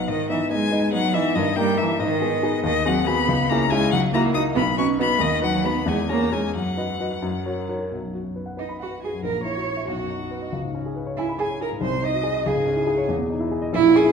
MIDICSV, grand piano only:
0, 0, Header, 1, 2, 480
1, 0, Start_track
1, 0, Key_signature, 5, "major"
1, 0, Tempo, 427350
1, 92, Time_signature, 6, 3, 24, 8
1, 5852, Tempo, 450113
1, 9692, Tempo, 428571
1, 15638, End_track
2, 0, Start_track
2, 0, Title_t, "Grand piano"
2, 0, Program_c, 0, 0
2, 0, Control_c, 0, 64, 127
2, 0, Note_on_c, 0, 35, 81
2, 0, Note_on_c, 0, 59, 61
2, 0, Note_on_c, 0, 63, 59
2, 0, Note_on_c, 0, 75, 65
2, 83, Note_on_c, 0, 44, 68
2, 111, Control_c, 0, 64, 0
2, 113, Note_off_c, 0, 35, 0
2, 117, Note_off_c, 0, 59, 0
2, 118, Note_off_c, 0, 63, 0
2, 121, Note_off_c, 0, 75, 0
2, 301, Control_c, 0, 64, 127
2, 320, Note_off_c, 0, 44, 0
2, 331, Note_on_c, 0, 59, 66
2, 332, Note_on_c, 0, 63, 71
2, 337, Note_on_c, 0, 75, 72
2, 543, Note_off_c, 0, 59, 0
2, 549, Note_off_c, 0, 63, 0
2, 552, Note_off_c, 0, 75, 0
2, 560, Note_on_c, 0, 59, 64
2, 571, Note_on_c, 0, 63, 61
2, 573, Note_on_c, 0, 75, 66
2, 779, Note_off_c, 0, 59, 0
2, 789, Note_off_c, 0, 63, 0
2, 790, Note_off_c, 0, 75, 0
2, 796, Note_on_c, 0, 59, 63
2, 806, Note_on_c, 0, 63, 60
2, 810, Note_on_c, 0, 75, 74
2, 1018, Note_off_c, 0, 59, 0
2, 1024, Note_off_c, 0, 63, 0
2, 1027, Note_off_c, 0, 75, 0
2, 1038, Note_on_c, 0, 59, 62
2, 1041, Note_on_c, 0, 63, 55
2, 1045, Note_on_c, 0, 75, 66
2, 1258, Note_off_c, 0, 59, 0
2, 1261, Note_off_c, 0, 63, 0
2, 1263, Note_off_c, 0, 75, 0
2, 1274, Note_on_c, 0, 59, 70
2, 1282, Note_on_c, 0, 63, 70
2, 1286, Note_on_c, 0, 75, 73
2, 1498, Note_off_c, 0, 59, 0
2, 1503, Note_off_c, 0, 63, 0
2, 1505, Note_off_c, 0, 75, 0
2, 1522, Note_on_c, 0, 43, 83
2, 1555, Control_c, 0, 64, 0
2, 1725, Control_c, 0, 64, 127
2, 1759, Note_off_c, 0, 43, 0
2, 1759, Note_on_c, 0, 58, 73
2, 1761, Note_on_c, 0, 63, 72
2, 1769, Note_on_c, 0, 70, 80
2, 1980, Note_off_c, 0, 58, 0
2, 1981, Note_off_c, 0, 63, 0
2, 1985, Note_off_c, 0, 70, 0
2, 1998, Note_on_c, 0, 58, 67
2, 2008, Note_on_c, 0, 63, 65
2, 2011, Note_on_c, 0, 70, 74
2, 2220, Note_off_c, 0, 58, 0
2, 2225, Note_off_c, 0, 63, 0
2, 2227, Note_off_c, 0, 70, 0
2, 2238, Note_on_c, 0, 44, 88
2, 2274, Control_c, 0, 64, 0
2, 2433, Control_c, 0, 64, 127
2, 2478, Note_off_c, 0, 44, 0
2, 2484, Note_on_c, 0, 59, 59
2, 2486, Note_on_c, 0, 63, 59
2, 2490, Note_on_c, 0, 68, 68
2, 2703, Note_off_c, 0, 59, 0
2, 2704, Note_off_c, 0, 63, 0
2, 2707, Note_off_c, 0, 68, 0
2, 2720, Note_on_c, 0, 59, 73
2, 2722, Note_on_c, 0, 63, 65
2, 2731, Note_on_c, 0, 68, 77
2, 2941, Note_off_c, 0, 59, 0
2, 2942, Note_off_c, 0, 63, 0
2, 2946, Note_off_c, 0, 68, 0
2, 2956, Note_on_c, 0, 39, 88
2, 2994, Control_c, 0, 64, 0
2, 3148, Control_c, 0, 64, 127
2, 3195, Note_off_c, 0, 39, 0
2, 3201, Note_on_c, 0, 60, 75
2, 3204, Note_on_c, 0, 66, 74
2, 3210, Note_on_c, 0, 68, 77
2, 3421, Note_off_c, 0, 60, 0
2, 3422, Note_off_c, 0, 66, 0
2, 3425, Note_off_c, 0, 68, 0
2, 3449, Note_on_c, 0, 60, 64
2, 3456, Note_on_c, 0, 66, 68
2, 3457, Note_on_c, 0, 68, 79
2, 3665, Note_off_c, 0, 60, 0
2, 3668, Note_off_c, 0, 66, 0
2, 3669, Note_off_c, 0, 68, 0
2, 3689, Note_on_c, 0, 37, 91
2, 3708, Control_c, 0, 64, 0
2, 3880, Control_c, 0, 64, 127
2, 3921, Note_off_c, 0, 37, 0
2, 3939, Note_on_c, 0, 61, 66
2, 3947, Note_on_c, 0, 64, 68
2, 3953, Note_on_c, 0, 68, 69
2, 4150, Note_off_c, 0, 61, 0
2, 4154, Note_off_c, 0, 64, 0
2, 4157, Note_off_c, 0, 68, 0
2, 4171, Note_on_c, 0, 61, 71
2, 4179, Note_on_c, 0, 64, 74
2, 4179, Note_on_c, 0, 68, 79
2, 4385, Note_off_c, 0, 61, 0
2, 4389, Note_off_c, 0, 64, 0
2, 4390, Note_off_c, 0, 68, 0
2, 4413, Note_on_c, 0, 37, 83
2, 4430, Control_c, 0, 64, 0
2, 4621, Control_c, 0, 64, 127
2, 4642, Note_off_c, 0, 37, 0
2, 4659, Note_on_c, 0, 64, 78
2, 4659, Note_on_c, 0, 66, 72
2, 4667, Note_on_c, 0, 70, 80
2, 4862, Note_off_c, 0, 64, 0
2, 4865, Note_off_c, 0, 66, 0
2, 4871, Note_off_c, 0, 70, 0
2, 4879, Note_on_c, 0, 64, 70
2, 4882, Note_on_c, 0, 66, 67
2, 4888, Note_on_c, 0, 70, 68
2, 5099, Note_off_c, 0, 64, 0
2, 5100, Note_off_c, 0, 66, 0
2, 5104, Note_off_c, 0, 70, 0
2, 5127, Note_on_c, 0, 35, 87
2, 5146, Control_c, 0, 64, 0
2, 5358, Control_c, 0, 64, 127
2, 5361, Note_off_c, 0, 35, 0
2, 5370, Note_on_c, 0, 63, 61
2, 5371, Note_on_c, 0, 66, 54
2, 5372, Note_on_c, 0, 71, 62
2, 5585, Note_off_c, 0, 63, 0
2, 5587, Note_off_c, 0, 66, 0
2, 5589, Note_off_c, 0, 71, 0
2, 5602, Note_on_c, 0, 63, 68
2, 5604, Note_on_c, 0, 66, 62
2, 5613, Note_on_c, 0, 71, 71
2, 5826, Note_off_c, 0, 63, 0
2, 5826, Note_off_c, 0, 66, 0
2, 5831, Note_off_c, 0, 71, 0
2, 5841, Note_on_c, 0, 39, 81
2, 5873, Control_c, 0, 64, 0
2, 6035, Control_c, 0, 64, 127
2, 6064, Note_on_c, 0, 63, 65
2, 6066, Note_on_c, 0, 66, 64
2, 6074, Note_off_c, 0, 39, 0
2, 6074, Note_on_c, 0, 71, 70
2, 6286, Note_off_c, 0, 63, 0
2, 6287, Note_off_c, 0, 66, 0
2, 6291, Note_off_c, 0, 71, 0
2, 6304, Note_on_c, 0, 63, 53
2, 6310, Note_on_c, 0, 66, 54
2, 6315, Note_on_c, 0, 71, 61
2, 6526, Note_off_c, 0, 63, 0
2, 6529, Note_off_c, 0, 66, 0
2, 6532, Note_off_c, 0, 71, 0
2, 6545, Note_on_c, 0, 40, 85
2, 6582, Control_c, 0, 64, 0
2, 6786, Note_off_c, 0, 40, 0
2, 6789, Note_on_c, 0, 61, 54
2, 6798, Note_on_c, 0, 68, 56
2, 6800, Control_c, 0, 64, 127
2, 6803, Note_on_c, 0, 73, 58
2, 7014, Note_off_c, 0, 61, 0
2, 7018, Note_off_c, 0, 68, 0
2, 7021, Note_off_c, 0, 73, 0
2, 7033, Note_on_c, 0, 61, 58
2, 7041, Note_on_c, 0, 68, 55
2, 7043, Note_on_c, 0, 73, 56
2, 7258, Note_off_c, 0, 61, 0
2, 7263, Note_off_c, 0, 68, 0
2, 7264, Note_off_c, 0, 73, 0
2, 7277, Note_on_c, 0, 42, 60
2, 7308, Control_c, 0, 64, 0
2, 7509, Control_c, 0, 64, 127
2, 7517, Note_on_c, 0, 71, 53
2, 7518, Note_on_c, 0, 66, 54
2, 7520, Note_off_c, 0, 42, 0
2, 7524, Note_on_c, 0, 75, 56
2, 7744, Note_off_c, 0, 66, 0
2, 7745, Note_off_c, 0, 71, 0
2, 7748, Note_off_c, 0, 75, 0
2, 7760, Note_on_c, 0, 66, 52
2, 7766, Note_on_c, 0, 71, 55
2, 7773, Note_on_c, 0, 75, 58
2, 7989, Note_off_c, 0, 66, 0
2, 7992, Note_off_c, 0, 71, 0
2, 7996, Note_off_c, 0, 75, 0
2, 7997, Note_on_c, 0, 42, 75
2, 8048, Control_c, 0, 64, 0
2, 8232, Control_c, 0, 64, 127
2, 8245, Note_on_c, 0, 66, 51
2, 8247, Note_off_c, 0, 42, 0
2, 8249, Note_on_c, 0, 70, 45
2, 8251, Note_on_c, 0, 73, 56
2, 8476, Note_off_c, 0, 66, 0
2, 8479, Note_off_c, 0, 70, 0
2, 8480, Note_off_c, 0, 73, 0
2, 8492, Note_on_c, 0, 66, 54
2, 8499, Note_on_c, 0, 70, 56
2, 8500, Note_on_c, 0, 73, 58
2, 8719, Note_off_c, 0, 66, 0
2, 8723, Note_off_c, 0, 70, 0
2, 8724, Note_off_c, 0, 73, 0
2, 8737, Note_on_c, 0, 35, 39
2, 8776, Control_c, 0, 64, 0
2, 8847, Note_on_c, 0, 42, 29
2, 8949, Control_c, 0, 64, 127
2, 8972, Note_on_c, 0, 66, 38
2, 9049, Note_off_c, 0, 42, 0
2, 9085, Note_on_c, 0, 42, 31
2, 9170, Note_off_c, 0, 66, 0
2, 9209, Note_on_c, 0, 71, 36
2, 9286, Note_off_c, 0, 42, 0
2, 9315, Note_on_c, 0, 78, 38
2, 9406, Note_off_c, 0, 71, 0
2, 9437, Note_on_c, 0, 71, 41
2, 9517, Note_off_c, 0, 78, 0
2, 9561, Note_on_c, 0, 83, 43
2, 9636, Note_off_c, 0, 71, 0
2, 9679, Note_on_c, 0, 78, 35
2, 9758, Note_off_c, 0, 83, 0
2, 9800, Note_on_c, 0, 71, 39
2, 9881, Note_off_c, 0, 78, 0
2, 9929, Note_on_c, 0, 66, 39
2, 10001, Note_off_c, 0, 71, 0
2, 10052, Note_on_c, 0, 42, 32
2, 10124, Note_off_c, 0, 35, 0
2, 10126, Note_off_c, 0, 66, 0
2, 10159, Note_on_c, 0, 34, 45
2, 10175, Note_off_c, 0, 42, 0
2, 10200, Control_c, 0, 64, 0
2, 10284, Note_on_c, 0, 46, 31
2, 10405, Note_on_c, 0, 64, 41
2, 10406, Control_c, 0, 64, 127
2, 10482, Note_off_c, 0, 46, 0
2, 10527, Note_on_c, 0, 66, 38
2, 10603, Note_off_c, 0, 64, 0
2, 10646, Note_on_c, 0, 73, 41
2, 10725, Note_off_c, 0, 66, 0
2, 10763, Note_on_c, 0, 76, 37
2, 10845, Note_off_c, 0, 73, 0
2, 10869, Note_off_c, 0, 34, 0
2, 10886, Note_on_c, 0, 35, 54
2, 10892, Note_off_c, 0, 76, 0
2, 10919, Control_c, 0, 64, 0
2, 11006, Note_on_c, 0, 42, 42
2, 11112, Control_c, 0, 64, 127
2, 11131, Note_on_c, 0, 63, 36
2, 11208, Note_off_c, 0, 42, 0
2, 11262, Note_on_c, 0, 66, 39
2, 11331, Note_off_c, 0, 63, 0
2, 11372, Note_on_c, 0, 71, 44
2, 11457, Note_off_c, 0, 66, 0
2, 11493, Note_on_c, 0, 75, 43
2, 11573, Note_off_c, 0, 71, 0
2, 11600, Note_off_c, 0, 35, 0
2, 11610, Note_on_c, 0, 37, 54
2, 11622, Note_off_c, 0, 75, 0
2, 11649, Control_c, 0, 64, 0
2, 11738, Note_on_c, 0, 44, 42
2, 11839, Control_c, 0, 64, 127
2, 11858, Note_on_c, 0, 61, 45
2, 11940, Note_off_c, 0, 44, 0
2, 11987, Note_on_c, 0, 68, 44
2, 12060, Note_off_c, 0, 61, 0
2, 12101, Note_on_c, 0, 71, 43
2, 12184, Note_off_c, 0, 68, 0
2, 12218, Note_on_c, 0, 73, 52
2, 12300, Note_off_c, 0, 71, 0
2, 12354, Note_on_c, 0, 80, 46
2, 12417, Note_off_c, 0, 73, 0
2, 12467, Note_on_c, 0, 83, 53
2, 12545, Note_off_c, 0, 80, 0
2, 12594, Note_on_c, 0, 80, 50
2, 12661, Note_off_c, 0, 83, 0
2, 12699, Note_on_c, 0, 73, 44
2, 12785, Note_off_c, 0, 80, 0
2, 12827, Note_on_c, 0, 68, 50
2, 12898, Note_off_c, 0, 73, 0
2, 12947, Note_on_c, 0, 44, 43
2, 13020, Note_off_c, 0, 37, 0
2, 13022, Note_off_c, 0, 68, 0
2, 13049, Note_on_c, 0, 36, 64
2, 13070, Note_off_c, 0, 44, 0
2, 13092, Control_c, 0, 64, 0
2, 13171, Note_on_c, 0, 48, 44
2, 13266, Control_c, 0, 64, 127
2, 13290, Note_on_c, 0, 63, 54
2, 13371, Note_off_c, 0, 48, 0
2, 13411, Note_on_c, 0, 66, 49
2, 13489, Note_off_c, 0, 63, 0
2, 13525, Note_on_c, 0, 68, 59
2, 13609, Note_off_c, 0, 66, 0
2, 13647, Note_on_c, 0, 75, 61
2, 13726, Note_off_c, 0, 68, 0
2, 13751, Note_off_c, 0, 36, 0
2, 13775, Note_off_c, 0, 75, 0
2, 13776, Note_on_c, 0, 37, 70
2, 13804, Control_c, 0, 64, 0
2, 13885, Note_on_c, 0, 44, 55
2, 13998, Note_on_c, 0, 61, 47
2, 14007, Control_c, 0, 64, 127
2, 14088, Note_off_c, 0, 44, 0
2, 14120, Note_on_c, 0, 64, 51
2, 14204, Note_off_c, 0, 61, 0
2, 14236, Note_on_c, 0, 68, 65
2, 14325, Note_off_c, 0, 64, 0
2, 14358, Note_on_c, 0, 73, 62
2, 14443, Note_off_c, 0, 68, 0
2, 14478, Note_on_c, 0, 40, 69
2, 14480, Note_off_c, 0, 37, 0
2, 14492, Note_off_c, 0, 73, 0
2, 14529, Control_c, 0, 64, 0
2, 14593, Note_on_c, 0, 47, 49
2, 14712, Note_on_c, 0, 63, 59
2, 14737, Control_c, 0, 64, 127
2, 14800, Note_off_c, 0, 47, 0
2, 14835, Note_on_c, 0, 64, 61
2, 14918, Note_off_c, 0, 63, 0
2, 14960, Note_on_c, 0, 68, 56
2, 15039, Note_off_c, 0, 64, 0
2, 15075, Note_on_c, 0, 75, 65
2, 15161, Note_off_c, 0, 68, 0
2, 15183, Note_off_c, 0, 40, 0
2, 15193, Note_on_c, 0, 34, 77
2, 15206, Note_off_c, 0, 75, 0
2, 15242, Control_c, 0, 64, 0
2, 15320, Note_on_c, 0, 46, 63
2, 15441, Note_on_c, 0, 61, 59
2, 15448, Control_c, 0, 64, 127
2, 15518, Note_off_c, 0, 46, 0
2, 15558, Note_on_c, 0, 64, 58
2, 15638, Note_off_c, 0, 34, 0
2, 15638, Note_off_c, 0, 61, 0
2, 15638, Note_off_c, 0, 64, 0
2, 15638, End_track
0, 0, End_of_file